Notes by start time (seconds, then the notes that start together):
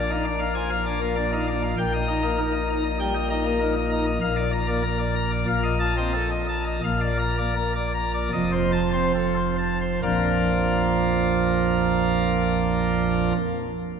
Already playing: A#1 A#2
0.10 D#4 F5
0.25 D4 D6
0.39 F5
0.55 F3 G#5
0.70 F5
0.86 D4 D6
1.01 A#3 F5
1.16 D4 D5
1.32 D#4 F5
1.48 D4 D6
1.63 F5
1.78 A#1 A#2 G5
1.94 D#5
2.08 D#4 A#5
2.24 A#3 D#5
2.38 D#4 A#4
2.53 D#5
2.69 D#4 A#5
2.83 D#5
3.00 G3 G5
3.15 D#5
3.30 D#4 A#5
3.45 A#3 D#5
3.60 D#4 A#4
3.76 D#5
3.91 D#4 A#5
4.06 D#5
4.21 A#1 A#2 F5
4.36 D5
4.52 A#5
4.68 A#3 D5
4.83 A#4
4.99 D5
5.16 A#5
5.31 D5
5.47 A#1 A#2 F5
5.63 D#5
5.80 A5
5.97 C4 D#5
6.13 A4
6.31 D#5
6.49 A5
6.66 D#5
6.84 A#1 A#2 F5
7.00 D5
7.19 A#5
7.38 A#3 D5
7.56 A#4
7.75 D5
7.95 A#5
8.14 D5
8.33 F1 F2 D#5
8.52 C5
8.72 A5
8.93 C4 C5
9.15 A4
9.36 C5
9.58 A5
9.81 C5
10.03 A#1 F2 F3 A#3 D4 F4